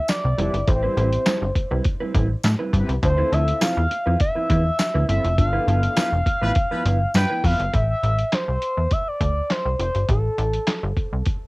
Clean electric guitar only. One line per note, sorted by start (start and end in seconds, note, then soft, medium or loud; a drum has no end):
0.24 muted clean electric guitar stroke soft
0.38 0.55 G3 medium
0.38 0.53 C4 medium
0.38 0.53 E4 medium
0.38 0.52 A4 medium
0.53 muted clean electric guitar stroke medium
0.67 muted clean electric guitar stroke soft
0.83 0.95 G3 medium
0.83 0.96 C4 medium
0.83 0.97 E4 medium
0.83 0.97 B4 medium
0.96 1.10 G3 medium
0.96 1.10 C4 medium
0.96 1.11 E4 medium
0.96 1.11 B4 medium
1.26 1.43 G3 medium
1.26 1.42 C4 medium
1.26 1.41 E4 loud
1.26 1.40 A4 medium
1.41 muted clean electric guitar stroke soft
1.55 muted clean electric guitar stroke soft
1.71 1.84 G3 soft
1.71 1.84 C4 soft
1.71 1.83 E4 medium
1.71 1.83 B4 medium
1.85 muted clean electric guitar stroke soft
2.00 2.13 G3 medium
2.00 2.14 C4 medium
2.00 2.14 E4 medium
2.00 2.15 B4 loud
2.14 2.28 G3 medium
2.14 2.28 C4 medium
2.14 2.28 E4 medium
2.14 2.28 B4 medium
2.30 muted clean electric guitar stroke medium
2.44 muted clean electric guitar stroke soft
2.59 2.72 G3 medium
2.59 2.73 C4 medium
2.59 2.73 E4 medium
2.59 2.74 B4 medium
2.73 muted clean electric guitar stroke soft
2.89 muted clean electric guitar stroke medium
3.02 muted clean electric guitar stroke soft
3.18 3.30 F3 medium
3.18 3.31 C4 medium
3.18 3.32 E4 medium
3.18 3.32 B4 medium
3.32 3.45 F3 medium
3.32 3.45 C4 medium
3.32 3.46 E4 medium
3.32 3.46 B4 medium
3.47 muted clean electric guitar stroke soft
3.61 3.78 F3 medium
3.61 3.77 C4 medium
3.61 3.77 E4 medium
3.61 3.76 A4 medium
3.77 muted clean electric guitar stroke soft
3.90 muted clean electric guitar stroke soft
4.06 4.19 F3 medium
4.06 4.19 C4 medium
4.06 4.18 E4 medium
4.06 4.18 B4 medium
4.20 muted clean electric guitar stroke soft
4.35 4.48 F3 medium
4.35 4.48 C4 medium
4.35 4.48 E4 medium
4.35 4.47 B4 medium
4.49 4.66 F3 medium
4.49 4.65 C4 medium
4.49 4.65 E4 medium
4.49 4.65 B4 loud
4.65 muted clean electric guitar stroke soft
4.79 muted clean electric guitar stroke soft
4.94 5.07 F3 medium
4.94 5.08 C4 medium
4.94 5.08 E4 medium
4.94 5.09 B4 medium
5.08 muted clean electric guitar stroke soft
5.24 muted clean electric guitar stroke soft
5.38 muted clean electric guitar stroke soft
5.53 5.66 F3 medium
5.53 5.66 B3 medium
5.53 5.67 E4 medium
5.53 5.68 B4 medium
5.67 5.80 F3 medium
5.67 5.81 B3 medium
5.67 5.81 E4 medium
5.67 5.81 B4 medium
5.83 muted clean electric guitar stroke soft
5.96 6.13 F3 medium
5.96 6.12 B3 medium
5.96 6.12 E4 medium
5.96 6.11 A4 medium
6.12 muted clean electric guitar stroke medium
6.26 muted clean electric guitar stroke soft
6.42 6.54 F3 soft
6.42 6.54 B3 soft
6.42 6.54 E4 medium
6.42 6.53 B4 medium
6.71 6.84 F3 medium
6.71 6.84 B3 medium
6.71 6.85 E4 medium
6.71 6.86 B4 medium
6.85 6.98 F3 medium
6.85 6.99 B3 medium
6.85 6.99 E4 medium
6.85 6.99 B4 medium
7.01 muted clean electric guitar stroke medium
7.14 muted clean electric guitar stroke soft
7.30 7.43 F3 medium
7.30 7.43 B3 medium
7.30 7.44 E4 medium
7.30 7.45 B4 medium
7.59 muted clean electric guitar stroke soft